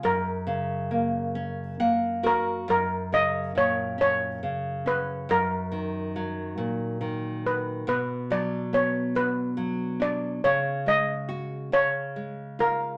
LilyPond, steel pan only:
\new Staff \with { instrumentName = "Steel pan" } { \time 6/8 \key fis \major \tempo 4. = 46 ais'2~ ais'8 ais'8 | ais'8 dis''8 cis''8 cis''4 b'8 | ais'2~ ais'8 b'8 | b'8 d''8 cis''8 b'4 d''8 |
cis''8 dis''4 cis''4 ais'8 | }